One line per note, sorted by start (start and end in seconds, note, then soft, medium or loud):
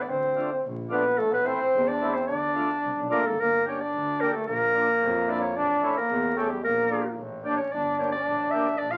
0.02 0.12 D5 medium
0.08 0.25 D2 medium
0.08 0.50 C4 medium
0.08 0.64 C5 medium
0.36 0.50 A3 medium
0.36 0.50 D4 medium
0.36 0.50 F4 medium
0.52 0.64 C4 medium
0.65 0.98 A#1 loud
0.89 1.04 A3 medium
0.89 1.21 B3 medium
0.89 1.04 D4 medium
0.89 1.04 F4 medium
0.89 1.19 B4 medium
1.18 1.35 A1 medium
1.18 1.33 A3 medium
1.18 1.32 A4 medium
1.31 1.47 B3 medium
1.31 1.48 B4 medium
1.44 1.59 A3 medium
1.44 1.59 C4 medium
1.44 1.91 C4 medium
1.44 1.59 E4 medium
1.44 1.90 C5 loud
1.74 2.07 E2 loud
1.88 2.17 D4 medium
1.88 2.16 D5 loud
2.01 2.15 A3 medium
2.01 2.15 C4 medium
2.01 2.15 E4 medium
2.14 2.31 C4 medium
2.14 2.27 C5 medium
2.27 2.46 D2 medium
2.27 3.11 D4 medium
2.27 3.06 D5 loud
2.54 2.69 A3 medium
2.54 2.69 D4 medium
2.54 2.69 F4 medium
2.84 2.96 C2 medium
2.98 3.10 B1 medium
3.09 3.23 A1 medium
3.09 3.24 A3 medium
3.09 3.37 A#3 medium
3.09 3.24 D4 medium
3.09 3.24 F4 medium
3.09 3.28 A#4 loud
3.25 3.37 G#1 medium
3.25 3.42 A4 medium
3.39 3.55 G1 medium
3.39 3.65 A#3 medium
3.39 3.67 A#4 loud
3.65 3.79 A#3 medium
3.65 3.81 C#4 medium
3.65 3.79 D4 soft
3.65 3.79 G4 medium
3.65 3.83 C#5 medium
3.80 4.33 D4 medium
3.80 4.22 D5 loud
3.93 4.26 D2 medium
4.20 4.34 A#3 medium
4.20 4.34 D4 medium
4.20 4.34 G4 medium
4.20 4.34 A#4 medium
4.32 4.47 A3 medium
4.32 4.46 A4 medium
4.47 4.64 A#1 loud
4.47 5.53 A#3 medium
4.47 5.32 A#4 loud
4.74 4.88 A#3 medium
4.74 4.88 D4 soft
4.74 4.88 F4 medium
5.02 5.35 F2 loud
5.27 5.42 A#3 medium
5.27 5.42 D4 medium
5.27 5.42 E4 medium
5.27 5.41 D5 medium
5.41 5.58 C#5 medium
5.56 5.73 A1 medium
5.56 6.00 D4 loud
5.56 5.83 D5 medium
5.83 5.97 A3 medium
5.83 5.97 C#4 medium
5.83 5.97 E4 medium
5.83 5.96 C#5 medium
5.97 6.37 A#3 medium
5.97 6.39 A#4 medium
6.10 6.43 E2 loud
6.36 6.50 A3 medium
6.36 6.52 A3 medium
6.36 6.50 C#4 medium
6.36 6.51 G4 medium
6.36 6.51 A4 medium
6.49 6.66 G3 medium
6.49 6.64 G4 medium
6.64 6.82 A#1 medium
6.64 7.20 A#3 medium
6.64 7.16 A#4 medium
6.89 7.04 A#3 medium
6.89 7.04 D4 medium
6.89 7.05 F4 medium
7.19 7.51 A1 loud
7.43 7.58 A#3 medium
7.43 7.59 D4 medium
7.43 7.62 D4 medium
7.43 7.59 G4 medium
7.43 7.56 D5 medium
7.57 7.73 C#4 medium
7.57 7.74 C#5 medium
7.72 7.90 G1 medium
7.72 8.11 D4 medium
7.72 7.98 D5 loud
7.99 8.13 A#3 soft
7.99 8.13 D4 soft
7.99 8.13 G4 medium
7.99 8.11 C#5 medium
8.12 8.77 D4 medium
8.12 8.53 D5 loud
8.27 8.60 A1 medium
8.51 8.67 A#3 medium
8.51 8.67 D4 medium
8.51 8.67 G4 medium
8.51 8.79 E5 loud
8.78 8.97 A#1 medium
8.78 8.92 D4 medium
8.78 8.92 D5 loud
8.91 8.97 F4 medium
8.91 8.97 F5 medium